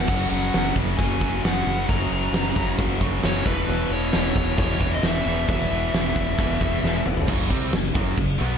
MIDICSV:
0, 0, Header, 1, 6, 480
1, 0, Start_track
1, 0, Tempo, 449438
1, 84, Time_signature, 4, 2, 24, 8
1, 9162, End_track
2, 0, Start_track
2, 0, Title_t, "Lead electric guitar"
2, 0, Program_c, 0, 29
2, 0, Note_on_c, 0, 78, 103
2, 273, Note_off_c, 0, 78, 0
2, 315, Note_on_c, 0, 78, 93
2, 767, Note_off_c, 0, 78, 0
2, 1036, Note_on_c, 0, 80, 94
2, 1487, Note_off_c, 0, 80, 0
2, 1548, Note_on_c, 0, 78, 82
2, 1984, Note_off_c, 0, 78, 0
2, 2018, Note_on_c, 0, 82, 95
2, 2930, Note_off_c, 0, 82, 0
2, 3471, Note_on_c, 0, 73, 86
2, 3683, Note_off_c, 0, 73, 0
2, 3706, Note_on_c, 0, 71, 86
2, 4187, Note_on_c, 0, 73, 94
2, 4190, Note_off_c, 0, 71, 0
2, 4882, Note_off_c, 0, 73, 0
2, 4895, Note_on_c, 0, 73, 99
2, 5226, Note_off_c, 0, 73, 0
2, 5284, Note_on_c, 0, 75, 87
2, 5378, Note_off_c, 0, 75, 0
2, 5406, Note_on_c, 0, 76, 99
2, 5879, Note_off_c, 0, 76, 0
2, 5893, Note_on_c, 0, 76, 97
2, 7505, Note_off_c, 0, 76, 0
2, 9162, End_track
3, 0, Start_track
3, 0, Title_t, "Distorted electric guitar"
3, 0, Program_c, 1, 30
3, 7773, Note_on_c, 1, 42, 94
3, 7779, Note_on_c, 1, 49, 96
3, 7781, Note_on_c, 1, 54, 108
3, 8001, Note_off_c, 1, 42, 0
3, 8003, Note_off_c, 1, 49, 0
3, 8004, Note_off_c, 1, 54, 0
3, 8007, Note_on_c, 1, 48, 96
3, 8008, Note_on_c, 1, 55, 101
3, 8012, Note_on_c, 1, 60, 100
3, 8238, Note_off_c, 1, 48, 0
3, 8239, Note_off_c, 1, 55, 0
3, 8240, Note_off_c, 1, 60, 0
3, 8248, Note_on_c, 1, 42, 67
3, 8259, Note_on_c, 1, 49, 66
3, 8437, Note_off_c, 1, 42, 0
3, 8443, Note_off_c, 1, 49, 0
3, 8474, Note_on_c, 1, 42, 91
3, 8482, Note_on_c, 1, 49, 104
3, 8488, Note_on_c, 1, 54, 109
3, 8700, Note_off_c, 1, 42, 0
3, 8710, Note_off_c, 1, 49, 0
3, 8713, Note_on_c, 1, 42, 59
3, 8718, Note_off_c, 1, 54, 0
3, 8722, Note_on_c, 1, 49, 66
3, 8910, Note_off_c, 1, 42, 0
3, 8914, Note_off_c, 1, 49, 0
3, 8949, Note_on_c, 1, 47, 91
3, 8955, Note_on_c, 1, 54, 93
3, 8960, Note_on_c, 1, 59, 109
3, 9162, Note_off_c, 1, 47, 0
3, 9162, Note_off_c, 1, 54, 0
3, 9162, Note_off_c, 1, 59, 0
3, 9162, End_track
4, 0, Start_track
4, 0, Title_t, "Distorted electric guitar"
4, 0, Program_c, 2, 30
4, 85, Note_on_c, 2, 42, 91
4, 89, Note_on_c, 2, 54, 94
4, 90, Note_on_c, 2, 49, 100
4, 322, Note_off_c, 2, 49, 0
4, 323, Note_off_c, 2, 42, 0
4, 328, Note_off_c, 2, 54, 0
4, 328, Note_on_c, 2, 42, 80
4, 333, Note_on_c, 2, 54, 90
4, 335, Note_on_c, 2, 49, 80
4, 565, Note_off_c, 2, 49, 0
4, 572, Note_off_c, 2, 42, 0
4, 576, Note_on_c, 2, 42, 85
4, 578, Note_on_c, 2, 49, 101
4, 582, Note_off_c, 2, 54, 0
4, 586, Note_on_c, 2, 54, 85
4, 799, Note_off_c, 2, 49, 0
4, 802, Note_off_c, 2, 42, 0
4, 805, Note_off_c, 2, 54, 0
4, 812, Note_on_c, 2, 49, 90
4, 815, Note_on_c, 2, 42, 77
4, 817, Note_on_c, 2, 54, 101
4, 1046, Note_off_c, 2, 42, 0
4, 1052, Note_off_c, 2, 49, 0
4, 1058, Note_off_c, 2, 54, 0
4, 1059, Note_on_c, 2, 42, 84
4, 1064, Note_on_c, 2, 49, 109
4, 1071, Note_on_c, 2, 54, 101
4, 1291, Note_off_c, 2, 49, 0
4, 1292, Note_off_c, 2, 42, 0
4, 1301, Note_off_c, 2, 54, 0
4, 1304, Note_on_c, 2, 49, 82
4, 1305, Note_on_c, 2, 42, 83
4, 1314, Note_on_c, 2, 54, 100
4, 1528, Note_off_c, 2, 42, 0
4, 1536, Note_off_c, 2, 49, 0
4, 1536, Note_off_c, 2, 54, 0
4, 1540, Note_on_c, 2, 42, 84
4, 1549, Note_on_c, 2, 49, 97
4, 1549, Note_on_c, 2, 54, 94
4, 1766, Note_off_c, 2, 42, 0
4, 1772, Note_off_c, 2, 49, 0
4, 1773, Note_off_c, 2, 54, 0
4, 1779, Note_on_c, 2, 42, 72
4, 1785, Note_on_c, 2, 49, 81
4, 1786, Note_on_c, 2, 54, 85
4, 2005, Note_off_c, 2, 42, 0
4, 2008, Note_off_c, 2, 49, 0
4, 2009, Note_off_c, 2, 54, 0
4, 2017, Note_on_c, 2, 42, 91
4, 2020, Note_on_c, 2, 49, 94
4, 2022, Note_on_c, 2, 54, 118
4, 2242, Note_off_c, 2, 42, 0
4, 2247, Note_off_c, 2, 49, 0
4, 2255, Note_on_c, 2, 42, 78
4, 2258, Note_off_c, 2, 54, 0
4, 2260, Note_on_c, 2, 49, 85
4, 2270, Note_on_c, 2, 54, 92
4, 2481, Note_off_c, 2, 42, 0
4, 2483, Note_off_c, 2, 49, 0
4, 2492, Note_off_c, 2, 54, 0
4, 2494, Note_on_c, 2, 42, 96
4, 2496, Note_on_c, 2, 49, 94
4, 2505, Note_on_c, 2, 54, 93
4, 2724, Note_off_c, 2, 42, 0
4, 2727, Note_off_c, 2, 49, 0
4, 2737, Note_on_c, 2, 42, 88
4, 2738, Note_off_c, 2, 54, 0
4, 2740, Note_on_c, 2, 49, 89
4, 2751, Note_on_c, 2, 54, 90
4, 2961, Note_off_c, 2, 42, 0
4, 2965, Note_off_c, 2, 49, 0
4, 2973, Note_off_c, 2, 54, 0
4, 2974, Note_on_c, 2, 42, 95
4, 2978, Note_on_c, 2, 49, 95
4, 2986, Note_on_c, 2, 54, 116
4, 3201, Note_off_c, 2, 42, 0
4, 3204, Note_off_c, 2, 49, 0
4, 3205, Note_off_c, 2, 54, 0
4, 3214, Note_on_c, 2, 42, 78
4, 3216, Note_on_c, 2, 49, 93
4, 3218, Note_on_c, 2, 54, 91
4, 3437, Note_off_c, 2, 42, 0
4, 3442, Note_off_c, 2, 49, 0
4, 3446, Note_off_c, 2, 54, 0
4, 3449, Note_on_c, 2, 42, 73
4, 3455, Note_on_c, 2, 49, 92
4, 3458, Note_on_c, 2, 54, 100
4, 3674, Note_off_c, 2, 42, 0
4, 3676, Note_off_c, 2, 49, 0
4, 3678, Note_off_c, 2, 54, 0
4, 3698, Note_on_c, 2, 40, 91
4, 3703, Note_on_c, 2, 47, 108
4, 3705, Note_on_c, 2, 52, 107
4, 3921, Note_off_c, 2, 47, 0
4, 3928, Note_off_c, 2, 40, 0
4, 3932, Note_on_c, 2, 40, 91
4, 3933, Note_off_c, 2, 52, 0
4, 3933, Note_on_c, 2, 47, 98
4, 3937, Note_on_c, 2, 52, 107
4, 4174, Note_off_c, 2, 47, 0
4, 4178, Note_off_c, 2, 40, 0
4, 4183, Note_on_c, 2, 40, 86
4, 4187, Note_on_c, 2, 47, 96
4, 4189, Note_off_c, 2, 52, 0
4, 4193, Note_on_c, 2, 52, 87
4, 4412, Note_off_c, 2, 47, 0
4, 4413, Note_off_c, 2, 40, 0
4, 4417, Note_on_c, 2, 40, 91
4, 4422, Note_off_c, 2, 52, 0
4, 4425, Note_on_c, 2, 47, 80
4, 4426, Note_on_c, 2, 52, 97
4, 4648, Note_off_c, 2, 47, 0
4, 4651, Note_off_c, 2, 40, 0
4, 4655, Note_on_c, 2, 40, 83
4, 4660, Note_off_c, 2, 52, 0
4, 4661, Note_on_c, 2, 47, 91
4, 4665, Note_on_c, 2, 52, 100
4, 4892, Note_off_c, 2, 40, 0
4, 4893, Note_off_c, 2, 47, 0
4, 4898, Note_off_c, 2, 52, 0
4, 4904, Note_on_c, 2, 40, 98
4, 4906, Note_on_c, 2, 47, 95
4, 4911, Note_on_c, 2, 52, 106
4, 5119, Note_off_c, 2, 40, 0
4, 5127, Note_off_c, 2, 47, 0
4, 5132, Note_off_c, 2, 52, 0
4, 5132, Note_on_c, 2, 40, 91
4, 5140, Note_on_c, 2, 47, 88
4, 5145, Note_on_c, 2, 52, 90
4, 5348, Note_off_c, 2, 40, 0
4, 5353, Note_off_c, 2, 47, 0
4, 5359, Note_off_c, 2, 52, 0
4, 5361, Note_on_c, 2, 40, 83
4, 5366, Note_on_c, 2, 47, 84
4, 5372, Note_on_c, 2, 52, 105
4, 5595, Note_off_c, 2, 40, 0
4, 5600, Note_off_c, 2, 47, 0
4, 5602, Note_off_c, 2, 52, 0
4, 5608, Note_on_c, 2, 40, 79
4, 5613, Note_on_c, 2, 47, 73
4, 5615, Note_on_c, 2, 52, 86
4, 5830, Note_off_c, 2, 40, 0
4, 5839, Note_off_c, 2, 52, 0
4, 5840, Note_off_c, 2, 47, 0
4, 5843, Note_on_c, 2, 40, 87
4, 5852, Note_on_c, 2, 52, 106
4, 5853, Note_on_c, 2, 47, 93
4, 6082, Note_off_c, 2, 40, 0
4, 6087, Note_off_c, 2, 52, 0
4, 6089, Note_off_c, 2, 47, 0
4, 6095, Note_on_c, 2, 40, 85
4, 6100, Note_on_c, 2, 52, 102
4, 6102, Note_on_c, 2, 47, 83
4, 6317, Note_off_c, 2, 40, 0
4, 6324, Note_off_c, 2, 52, 0
4, 6327, Note_off_c, 2, 47, 0
4, 6330, Note_on_c, 2, 40, 83
4, 6337, Note_on_c, 2, 52, 95
4, 6340, Note_on_c, 2, 47, 99
4, 6553, Note_off_c, 2, 40, 0
4, 6555, Note_off_c, 2, 47, 0
4, 6557, Note_off_c, 2, 52, 0
4, 6566, Note_on_c, 2, 40, 93
4, 6568, Note_on_c, 2, 47, 84
4, 6570, Note_on_c, 2, 52, 97
4, 6796, Note_off_c, 2, 40, 0
4, 6796, Note_off_c, 2, 47, 0
4, 6803, Note_off_c, 2, 52, 0
4, 6809, Note_on_c, 2, 40, 99
4, 6809, Note_on_c, 2, 47, 99
4, 6816, Note_on_c, 2, 52, 95
4, 7047, Note_off_c, 2, 40, 0
4, 7053, Note_off_c, 2, 52, 0
4, 7055, Note_off_c, 2, 47, 0
4, 7060, Note_on_c, 2, 40, 87
4, 7066, Note_on_c, 2, 52, 96
4, 7068, Note_on_c, 2, 47, 91
4, 7277, Note_off_c, 2, 40, 0
4, 7286, Note_off_c, 2, 52, 0
4, 7290, Note_on_c, 2, 40, 76
4, 7292, Note_off_c, 2, 47, 0
4, 7299, Note_on_c, 2, 52, 84
4, 7305, Note_on_c, 2, 47, 84
4, 7519, Note_off_c, 2, 40, 0
4, 7520, Note_off_c, 2, 47, 0
4, 7529, Note_off_c, 2, 52, 0
4, 7532, Note_on_c, 2, 40, 74
4, 7533, Note_on_c, 2, 47, 80
4, 7542, Note_on_c, 2, 52, 88
4, 7753, Note_off_c, 2, 40, 0
4, 7754, Note_off_c, 2, 47, 0
4, 7758, Note_off_c, 2, 52, 0
4, 9162, End_track
5, 0, Start_track
5, 0, Title_t, "Fingered electric bass"
5, 0, Program_c, 3, 33
5, 97, Note_on_c, 3, 30, 90
5, 322, Note_off_c, 3, 30, 0
5, 327, Note_on_c, 3, 30, 69
5, 557, Note_off_c, 3, 30, 0
5, 578, Note_on_c, 3, 30, 81
5, 803, Note_off_c, 3, 30, 0
5, 809, Note_on_c, 3, 30, 80
5, 1038, Note_off_c, 3, 30, 0
5, 1060, Note_on_c, 3, 30, 95
5, 1515, Note_off_c, 3, 30, 0
5, 1545, Note_on_c, 3, 30, 92
5, 1767, Note_off_c, 3, 30, 0
5, 1780, Note_on_c, 3, 30, 95
5, 2004, Note_off_c, 3, 30, 0
5, 2028, Note_on_c, 3, 30, 93
5, 2243, Note_off_c, 3, 30, 0
5, 2250, Note_on_c, 3, 30, 80
5, 2473, Note_off_c, 3, 30, 0
5, 2480, Note_on_c, 3, 30, 86
5, 2714, Note_off_c, 3, 30, 0
5, 2736, Note_on_c, 3, 30, 83
5, 2963, Note_off_c, 3, 30, 0
5, 2981, Note_on_c, 3, 30, 88
5, 3435, Note_off_c, 3, 30, 0
5, 3455, Note_on_c, 3, 30, 97
5, 3682, Note_off_c, 3, 30, 0
5, 3695, Note_on_c, 3, 28, 88
5, 3922, Note_off_c, 3, 28, 0
5, 3931, Note_on_c, 3, 28, 105
5, 4154, Note_off_c, 3, 28, 0
5, 4160, Note_on_c, 3, 28, 82
5, 4394, Note_off_c, 3, 28, 0
5, 4427, Note_on_c, 3, 28, 84
5, 4648, Note_off_c, 3, 28, 0
5, 4659, Note_on_c, 3, 28, 85
5, 4884, Note_off_c, 3, 28, 0
5, 4899, Note_on_c, 3, 28, 104
5, 5354, Note_off_c, 3, 28, 0
5, 5370, Note_on_c, 3, 28, 94
5, 5599, Note_off_c, 3, 28, 0
5, 5614, Note_on_c, 3, 28, 92
5, 5840, Note_off_c, 3, 28, 0
5, 5859, Note_on_c, 3, 28, 105
5, 6083, Note_off_c, 3, 28, 0
5, 6097, Note_on_c, 3, 28, 78
5, 6322, Note_off_c, 3, 28, 0
5, 6332, Note_on_c, 3, 28, 92
5, 6560, Note_off_c, 3, 28, 0
5, 6580, Note_on_c, 3, 28, 88
5, 6803, Note_off_c, 3, 28, 0
5, 6821, Note_on_c, 3, 28, 90
5, 7274, Note_off_c, 3, 28, 0
5, 7297, Note_on_c, 3, 28, 97
5, 7522, Note_off_c, 3, 28, 0
5, 7541, Note_on_c, 3, 28, 91
5, 7763, Note_off_c, 3, 28, 0
5, 7782, Note_on_c, 3, 30, 101
5, 7996, Note_off_c, 3, 30, 0
5, 8017, Note_on_c, 3, 36, 81
5, 8233, Note_off_c, 3, 36, 0
5, 8258, Note_on_c, 3, 30, 79
5, 8474, Note_off_c, 3, 30, 0
5, 8493, Note_on_c, 3, 30, 85
5, 8711, Note_off_c, 3, 30, 0
5, 8737, Note_on_c, 3, 30, 77
5, 8953, Note_off_c, 3, 30, 0
5, 8979, Note_on_c, 3, 35, 107
5, 9162, Note_off_c, 3, 35, 0
5, 9162, End_track
6, 0, Start_track
6, 0, Title_t, "Drums"
6, 83, Note_on_c, 9, 49, 97
6, 83, Note_on_c, 9, 57, 61
6, 89, Note_on_c, 9, 36, 115
6, 190, Note_off_c, 9, 49, 0
6, 190, Note_off_c, 9, 57, 0
6, 195, Note_off_c, 9, 36, 0
6, 574, Note_on_c, 9, 57, 63
6, 579, Note_on_c, 9, 38, 118
6, 681, Note_off_c, 9, 57, 0
6, 685, Note_off_c, 9, 38, 0
6, 812, Note_on_c, 9, 36, 82
6, 919, Note_off_c, 9, 36, 0
6, 1053, Note_on_c, 9, 57, 63
6, 1054, Note_on_c, 9, 36, 109
6, 1160, Note_off_c, 9, 57, 0
6, 1161, Note_off_c, 9, 36, 0
6, 1296, Note_on_c, 9, 36, 85
6, 1403, Note_off_c, 9, 36, 0
6, 1545, Note_on_c, 9, 57, 55
6, 1549, Note_on_c, 9, 38, 111
6, 1652, Note_off_c, 9, 57, 0
6, 1656, Note_off_c, 9, 38, 0
6, 2019, Note_on_c, 9, 36, 114
6, 2022, Note_on_c, 9, 57, 60
6, 2126, Note_off_c, 9, 36, 0
6, 2129, Note_off_c, 9, 57, 0
6, 2497, Note_on_c, 9, 57, 62
6, 2501, Note_on_c, 9, 38, 117
6, 2604, Note_off_c, 9, 57, 0
6, 2608, Note_off_c, 9, 38, 0
6, 2736, Note_on_c, 9, 36, 92
6, 2843, Note_off_c, 9, 36, 0
6, 2976, Note_on_c, 9, 36, 110
6, 2976, Note_on_c, 9, 57, 63
6, 3083, Note_off_c, 9, 36, 0
6, 3083, Note_off_c, 9, 57, 0
6, 3216, Note_on_c, 9, 36, 93
6, 3323, Note_off_c, 9, 36, 0
6, 3452, Note_on_c, 9, 57, 58
6, 3456, Note_on_c, 9, 38, 100
6, 3558, Note_off_c, 9, 57, 0
6, 3563, Note_off_c, 9, 38, 0
6, 3693, Note_on_c, 9, 36, 104
6, 3800, Note_off_c, 9, 36, 0
6, 3928, Note_on_c, 9, 57, 58
6, 4035, Note_off_c, 9, 57, 0
6, 4408, Note_on_c, 9, 57, 65
6, 4412, Note_on_c, 9, 38, 124
6, 4514, Note_off_c, 9, 57, 0
6, 4519, Note_off_c, 9, 38, 0
6, 4653, Note_on_c, 9, 36, 95
6, 4759, Note_off_c, 9, 36, 0
6, 4883, Note_on_c, 9, 57, 66
6, 4893, Note_on_c, 9, 36, 117
6, 4989, Note_off_c, 9, 57, 0
6, 5000, Note_off_c, 9, 36, 0
6, 5134, Note_on_c, 9, 36, 83
6, 5241, Note_off_c, 9, 36, 0
6, 5370, Note_on_c, 9, 57, 59
6, 5375, Note_on_c, 9, 38, 110
6, 5477, Note_off_c, 9, 57, 0
6, 5482, Note_off_c, 9, 38, 0
6, 5860, Note_on_c, 9, 36, 115
6, 5863, Note_on_c, 9, 57, 57
6, 5967, Note_off_c, 9, 36, 0
6, 5970, Note_off_c, 9, 57, 0
6, 6345, Note_on_c, 9, 57, 60
6, 6349, Note_on_c, 9, 38, 111
6, 6452, Note_off_c, 9, 57, 0
6, 6456, Note_off_c, 9, 38, 0
6, 6578, Note_on_c, 9, 36, 86
6, 6685, Note_off_c, 9, 36, 0
6, 6821, Note_on_c, 9, 36, 113
6, 6827, Note_on_c, 9, 57, 59
6, 6927, Note_off_c, 9, 36, 0
6, 6933, Note_off_c, 9, 57, 0
6, 7061, Note_on_c, 9, 36, 84
6, 7168, Note_off_c, 9, 36, 0
6, 7310, Note_on_c, 9, 38, 69
6, 7417, Note_off_c, 9, 38, 0
6, 7538, Note_on_c, 9, 45, 81
6, 7645, Note_off_c, 9, 45, 0
6, 7659, Note_on_c, 9, 43, 84
6, 7766, Note_off_c, 9, 43, 0
6, 7777, Note_on_c, 9, 36, 95
6, 7782, Note_on_c, 9, 49, 122
6, 7782, Note_on_c, 9, 57, 65
6, 7884, Note_off_c, 9, 36, 0
6, 7889, Note_off_c, 9, 49, 0
6, 7889, Note_off_c, 9, 57, 0
6, 7902, Note_on_c, 9, 38, 33
6, 8009, Note_off_c, 9, 38, 0
6, 8015, Note_on_c, 9, 36, 92
6, 8122, Note_off_c, 9, 36, 0
6, 8253, Note_on_c, 9, 57, 69
6, 8257, Note_on_c, 9, 38, 109
6, 8359, Note_off_c, 9, 57, 0
6, 8364, Note_off_c, 9, 38, 0
6, 8493, Note_on_c, 9, 36, 113
6, 8600, Note_off_c, 9, 36, 0
6, 8729, Note_on_c, 9, 57, 69
6, 8732, Note_on_c, 9, 36, 94
6, 8836, Note_off_c, 9, 57, 0
6, 8839, Note_off_c, 9, 36, 0
6, 9162, End_track
0, 0, End_of_file